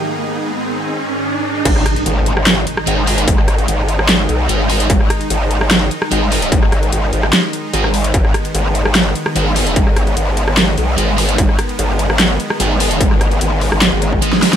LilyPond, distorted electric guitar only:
\new Staff \with { instrumentName = "Distorted electric guitar" } { \time 4/4 \key gis \minor \tempo 4 = 148 r1 | r2. <gis dis' gis'>8 <gis dis' gis'>8 | r2. <gis dis' gis'>8 <gis dis' gis'>8 | r2. <gis dis' gis'>8 <gis dis' gis'>8 |
r2. <gis dis' gis'>8 r8 | r2. <gis dis' gis'>8 <gis dis' gis'>8 | r2. <gis dis' gis'>8 <gis dis' gis'>8 | r2. <gis dis' gis'>8 <gis dis' gis'>8 |
r2. <gis dis' gis'>8 <gis dis' gis'>8 | }